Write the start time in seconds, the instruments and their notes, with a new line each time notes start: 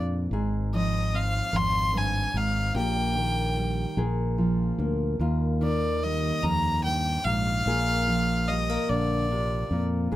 Already playing: fingered electric bass F2, nylon-string guitar A#2 F3 G#3 D4 F4
0.31 fingered electric bass G#1, nylon-string guitar G#2 G#4
0.73 nylon-string guitar F3, violin D#5
1.14 nylon-string guitar C4, violin F5
1.53 fingered electric bass G#1, nylon-string guitar F2, violin C6
1.94 nylon-string guitar G2, violin G#5
2.34 fingered electric bass G#1, nylon-string guitar G#2, violin F5
2.75 fingered electric bass A#1, nylon-string guitar A#2 G4, violin G5
3.16 nylon-string guitar D#3
3.57 nylon-string guitar G3
3.97 fingered electric bass A#1, nylon-string guitar A#2 G#4
4.38 nylon-string guitar F3
4.78 fingered electric bass D2, nylon-string guitar A#3
5.19 fingered electric bass D#2, nylon-string guitar D#2 F4
5.61 nylon-string guitar D#3, violin D5
6.03 nylon-string guitar G3, violin D#5
6.43 fingered electric bass D#2, nylon-string guitar F2, violin A#5
6.84 nylon-string guitar G2, violin G5
7.25 fingered electric bass A#1, nylon-string guitar G#2, violin F5
7.66 fingered electric bass A#1, nylon-string guitar A#2 G#4
8.07 nylon-string guitar F3
8.48 nylon-string guitar G3, violin D#5
8.69 nylon-string guitar A#3
8.89 fingered electric bass A#1, nylon-string guitar D3, violin D5
9.31 nylon-string guitar C3
9.71 fingered electric bass F2, nylon-string guitar A#2
10.12 fingered electric bass G#1, nylon-string guitar G#2 G#4